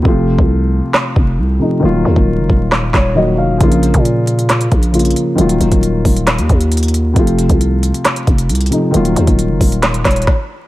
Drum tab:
HH |--------------------------------|--------------------------------|x-x-x-x-x---x-x-x-x-x-x-xxxxx---|x-x-x-x-x---o-x-x-x-x-x-xxxxx---|
CP |----------------x---------------|----------------x---x-----------|----------------x---------------|----------------x---------------|
SD |----------------o---------------|----------------o---o-----------|----------------o---------------|----------------o---------------|
BD |o-----o-------------o-----------|------o-----o-------o-----------|o-----o-------------o-----------|------o-----o-------o-----------|

HH |x-x-x-x-x---x-x-x-x-x-x-xxxxx---|x-x-x-x-x---o-x-x-x-xxxx--------|
CP |----------------x---------------|----------------x---x-----------|
SD |----------------o---------------|----------------o---o---o-------|
BD |o-----o-------------o-----------|------o-----o-------o---o-------|